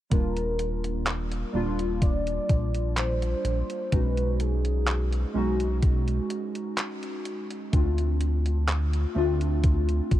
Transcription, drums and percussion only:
0, 0, Header, 1, 2, 480
1, 0, Start_track
1, 0, Tempo, 952381
1, 58, Time_signature, 4, 2, 24, 8
1, 5140, End_track
2, 0, Start_track
2, 0, Title_t, "Drums"
2, 57, Note_on_c, 9, 42, 84
2, 58, Note_on_c, 9, 36, 107
2, 108, Note_off_c, 9, 36, 0
2, 108, Note_off_c, 9, 42, 0
2, 184, Note_on_c, 9, 42, 37
2, 234, Note_off_c, 9, 42, 0
2, 298, Note_on_c, 9, 42, 62
2, 348, Note_off_c, 9, 42, 0
2, 424, Note_on_c, 9, 42, 37
2, 475, Note_off_c, 9, 42, 0
2, 537, Note_on_c, 9, 39, 108
2, 537, Note_on_c, 9, 42, 87
2, 588, Note_off_c, 9, 39, 0
2, 588, Note_off_c, 9, 42, 0
2, 663, Note_on_c, 9, 42, 35
2, 714, Note_off_c, 9, 42, 0
2, 904, Note_on_c, 9, 42, 37
2, 954, Note_off_c, 9, 42, 0
2, 1018, Note_on_c, 9, 36, 102
2, 1018, Note_on_c, 9, 42, 85
2, 1068, Note_off_c, 9, 36, 0
2, 1069, Note_off_c, 9, 42, 0
2, 1144, Note_on_c, 9, 42, 37
2, 1195, Note_off_c, 9, 42, 0
2, 1258, Note_on_c, 9, 36, 97
2, 1258, Note_on_c, 9, 42, 61
2, 1308, Note_off_c, 9, 36, 0
2, 1308, Note_off_c, 9, 42, 0
2, 1384, Note_on_c, 9, 42, 38
2, 1434, Note_off_c, 9, 42, 0
2, 1498, Note_on_c, 9, 39, 106
2, 1498, Note_on_c, 9, 42, 88
2, 1548, Note_off_c, 9, 39, 0
2, 1548, Note_off_c, 9, 42, 0
2, 1624, Note_on_c, 9, 42, 36
2, 1674, Note_off_c, 9, 42, 0
2, 1737, Note_on_c, 9, 42, 63
2, 1788, Note_off_c, 9, 42, 0
2, 1863, Note_on_c, 9, 42, 36
2, 1913, Note_off_c, 9, 42, 0
2, 1977, Note_on_c, 9, 42, 87
2, 1978, Note_on_c, 9, 36, 109
2, 2027, Note_off_c, 9, 42, 0
2, 2028, Note_off_c, 9, 36, 0
2, 2103, Note_on_c, 9, 42, 38
2, 2153, Note_off_c, 9, 42, 0
2, 2217, Note_on_c, 9, 42, 64
2, 2267, Note_off_c, 9, 42, 0
2, 2342, Note_on_c, 9, 42, 38
2, 2393, Note_off_c, 9, 42, 0
2, 2456, Note_on_c, 9, 39, 110
2, 2456, Note_on_c, 9, 42, 89
2, 2507, Note_off_c, 9, 39, 0
2, 2507, Note_off_c, 9, 42, 0
2, 2583, Note_on_c, 9, 42, 36
2, 2633, Note_off_c, 9, 42, 0
2, 2822, Note_on_c, 9, 42, 39
2, 2873, Note_off_c, 9, 42, 0
2, 2936, Note_on_c, 9, 42, 85
2, 2937, Note_on_c, 9, 36, 108
2, 2987, Note_off_c, 9, 42, 0
2, 2988, Note_off_c, 9, 36, 0
2, 3063, Note_on_c, 9, 42, 36
2, 3114, Note_off_c, 9, 42, 0
2, 3177, Note_on_c, 9, 42, 61
2, 3227, Note_off_c, 9, 42, 0
2, 3303, Note_on_c, 9, 42, 37
2, 3353, Note_off_c, 9, 42, 0
2, 3417, Note_on_c, 9, 39, 114
2, 3417, Note_on_c, 9, 42, 88
2, 3467, Note_off_c, 9, 39, 0
2, 3467, Note_off_c, 9, 42, 0
2, 3543, Note_on_c, 9, 42, 36
2, 3593, Note_off_c, 9, 42, 0
2, 3657, Note_on_c, 9, 42, 62
2, 3707, Note_off_c, 9, 42, 0
2, 3783, Note_on_c, 9, 42, 36
2, 3833, Note_off_c, 9, 42, 0
2, 3897, Note_on_c, 9, 36, 111
2, 3897, Note_on_c, 9, 42, 84
2, 3947, Note_off_c, 9, 42, 0
2, 3948, Note_off_c, 9, 36, 0
2, 4023, Note_on_c, 9, 42, 36
2, 4073, Note_off_c, 9, 42, 0
2, 4136, Note_on_c, 9, 42, 62
2, 4187, Note_off_c, 9, 42, 0
2, 4263, Note_on_c, 9, 42, 37
2, 4313, Note_off_c, 9, 42, 0
2, 4377, Note_on_c, 9, 39, 109
2, 4377, Note_on_c, 9, 42, 86
2, 4428, Note_off_c, 9, 39, 0
2, 4428, Note_off_c, 9, 42, 0
2, 4503, Note_on_c, 9, 42, 34
2, 4553, Note_off_c, 9, 42, 0
2, 4743, Note_on_c, 9, 42, 38
2, 4793, Note_off_c, 9, 42, 0
2, 4857, Note_on_c, 9, 42, 84
2, 4858, Note_on_c, 9, 36, 110
2, 4907, Note_off_c, 9, 42, 0
2, 4908, Note_off_c, 9, 36, 0
2, 4983, Note_on_c, 9, 42, 37
2, 5034, Note_off_c, 9, 42, 0
2, 5098, Note_on_c, 9, 36, 102
2, 5098, Note_on_c, 9, 42, 60
2, 5140, Note_off_c, 9, 36, 0
2, 5140, Note_off_c, 9, 42, 0
2, 5140, End_track
0, 0, End_of_file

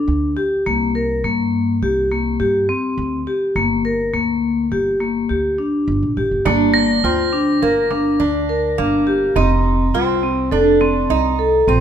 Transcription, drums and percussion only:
0, 0, Header, 1, 2, 480
1, 0, Start_track
1, 0, Key_signature, -2, "minor"
1, 0, Tempo, 580271
1, 543, Time_signature, 5, 2, 24, 8
1, 9763, End_track
2, 0, Start_track
2, 0, Title_t, "Frame drum"
2, 5339, Note_on_c, 9, 64, 58
2, 5422, Note_off_c, 9, 64, 0
2, 5822, Note_on_c, 9, 64, 17
2, 5905, Note_off_c, 9, 64, 0
2, 6058, Note_on_c, 9, 64, 17
2, 6141, Note_off_c, 9, 64, 0
2, 6300, Note_on_c, 9, 64, 16
2, 6383, Note_off_c, 9, 64, 0
2, 6540, Note_on_c, 9, 64, 44
2, 6623, Note_off_c, 9, 64, 0
2, 7498, Note_on_c, 9, 64, 15
2, 7581, Note_off_c, 9, 64, 0
2, 7740, Note_on_c, 9, 64, 51
2, 7822, Note_off_c, 9, 64, 0
2, 8218, Note_on_c, 9, 64, 17
2, 8301, Note_off_c, 9, 64, 0
2, 8463, Note_on_c, 9, 64, 17
2, 8546, Note_off_c, 9, 64, 0
2, 8940, Note_on_c, 9, 64, 40
2, 9022, Note_off_c, 9, 64, 0
2, 9763, End_track
0, 0, End_of_file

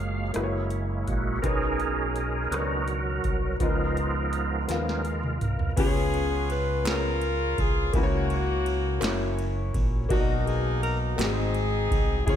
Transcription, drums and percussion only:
0, 0, Header, 1, 2, 480
1, 0, Start_track
1, 0, Tempo, 722022
1, 955, Time_signature, 6, 3, 24, 8
1, 8218, End_track
2, 0, Start_track
2, 0, Title_t, "Drums"
2, 226, Note_on_c, 9, 42, 74
2, 239, Note_on_c, 9, 37, 75
2, 293, Note_off_c, 9, 42, 0
2, 305, Note_off_c, 9, 37, 0
2, 468, Note_on_c, 9, 42, 42
2, 535, Note_off_c, 9, 42, 0
2, 715, Note_on_c, 9, 42, 38
2, 717, Note_on_c, 9, 36, 65
2, 781, Note_off_c, 9, 42, 0
2, 783, Note_off_c, 9, 36, 0
2, 955, Note_on_c, 9, 36, 89
2, 955, Note_on_c, 9, 42, 65
2, 1021, Note_off_c, 9, 42, 0
2, 1022, Note_off_c, 9, 36, 0
2, 1194, Note_on_c, 9, 42, 35
2, 1260, Note_off_c, 9, 42, 0
2, 1433, Note_on_c, 9, 42, 43
2, 1500, Note_off_c, 9, 42, 0
2, 1676, Note_on_c, 9, 42, 72
2, 1689, Note_on_c, 9, 37, 90
2, 1743, Note_off_c, 9, 42, 0
2, 1756, Note_off_c, 9, 37, 0
2, 1912, Note_on_c, 9, 42, 39
2, 1978, Note_off_c, 9, 42, 0
2, 2154, Note_on_c, 9, 42, 38
2, 2159, Note_on_c, 9, 36, 74
2, 2220, Note_off_c, 9, 42, 0
2, 2225, Note_off_c, 9, 36, 0
2, 2394, Note_on_c, 9, 42, 59
2, 2396, Note_on_c, 9, 36, 95
2, 2461, Note_off_c, 9, 42, 0
2, 2463, Note_off_c, 9, 36, 0
2, 2640, Note_on_c, 9, 42, 36
2, 2706, Note_off_c, 9, 42, 0
2, 2877, Note_on_c, 9, 42, 48
2, 2944, Note_off_c, 9, 42, 0
2, 3116, Note_on_c, 9, 42, 83
2, 3129, Note_on_c, 9, 38, 40
2, 3182, Note_off_c, 9, 42, 0
2, 3196, Note_off_c, 9, 38, 0
2, 3252, Note_on_c, 9, 38, 47
2, 3319, Note_off_c, 9, 38, 0
2, 3355, Note_on_c, 9, 42, 39
2, 3422, Note_off_c, 9, 42, 0
2, 3480, Note_on_c, 9, 47, 52
2, 3546, Note_off_c, 9, 47, 0
2, 3599, Note_on_c, 9, 42, 38
2, 3599, Note_on_c, 9, 45, 76
2, 3665, Note_off_c, 9, 42, 0
2, 3665, Note_off_c, 9, 45, 0
2, 3718, Note_on_c, 9, 43, 72
2, 3785, Note_off_c, 9, 43, 0
2, 3838, Note_on_c, 9, 51, 64
2, 3839, Note_on_c, 9, 36, 121
2, 3839, Note_on_c, 9, 49, 100
2, 3904, Note_off_c, 9, 51, 0
2, 3905, Note_off_c, 9, 49, 0
2, 3906, Note_off_c, 9, 36, 0
2, 4080, Note_on_c, 9, 51, 37
2, 4147, Note_off_c, 9, 51, 0
2, 4320, Note_on_c, 9, 51, 49
2, 4386, Note_off_c, 9, 51, 0
2, 4557, Note_on_c, 9, 51, 72
2, 4560, Note_on_c, 9, 39, 98
2, 4570, Note_on_c, 9, 38, 100
2, 4624, Note_off_c, 9, 51, 0
2, 4626, Note_off_c, 9, 39, 0
2, 4636, Note_off_c, 9, 38, 0
2, 4797, Note_on_c, 9, 51, 44
2, 4863, Note_off_c, 9, 51, 0
2, 5040, Note_on_c, 9, 51, 43
2, 5041, Note_on_c, 9, 36, 92
2, 5107, Note_off_c, 9, 36, 0
2, 5107, Note_off_c, 9, 51, 0
2, 5275, Note_on_c, 9, 51, 62
2, 5277, Note_on_c, 9, 36, 106
2, 5342, Note_off_c, 9, 51, 0
2, 5343, Note_off_c, 9, 36, 0
2, 5519, Note_on_c, 9, 51, 38
2, 5586, Note_off_c, 9, 51, 0
2, 5758, Note_on_c, 9, 51, 47
2, 5825, Note_off_c, 9, 51, 0
2, 5994, Note_on_c, 9, 39, 103
2, 5998, Note_on_c, 9, 51, 74
2, 6011, Note_on_c, 9, 38, 102
2, 6060, Note_off_c, 9, 39, 0
2, 6065, Note_off_c, 9, 51, 0
2, 6077, Note_off_c, 9, 38, 0
2, 6240, Note_on_c, 9, 51, 43
2, 6306, Note_off_c, 9, 51, 0
2, 6478, Note_on_c, 9, 36, 96
2, 6478, Note_on_c, 9, 51, 44
2, 6544, Note_off_c, 9, 36, 0
2, 6545, Note_off_c, 9, 51, 0
2, 6716, Note_on_c, 9, 36, 118
2, 6717, Note_on_c, 9, 51, 68
2, 6783, Note_off_c, 9, 36, 0
2, 6784, Note_off_c, 9, 51, 0
2, 6964, Note_on_c, 9, 51, 35
2, 7030, Note_off_c, 9, 51, 0
2, 7201, Note_on_c, 9, 51, 48
2, 7268, Note_off_c, 9, 51, 0
2, 7438, Note_on_c, 9, 39, 93
2, 7441, Note_on_c, 9, 51, 82
2, 7453, Note_on_c, 9, 38, 111
2, 7504, Note_off_c, 9, 39, 0
2, 7507, Note_off_c, 9, 51, 0
2, 7520, Note_off_c, 9, 38, 0
2, 7675, Note_on_c, 9, 51, 42
2, 7742, Note_off_c, 9, 51, 0
2, 7921, Note_on_c, 9, 36, 88
2, 7923, Note_on_c, 9, 51, 44
2, 7987, Note_off_c, 9, 36, 0
2, 7990, Note_off_c, 9, 51, 0
2, 8159, Note_on_c, 9, 36, 114
2, 8161, Note_on_c, 9, 51, 71
2, 8218, Note_off_c, 9, 36, 0
2, 8218, Note_off_c, 9, 51, 0
2, 8218, End_track
0, 0, End_of_file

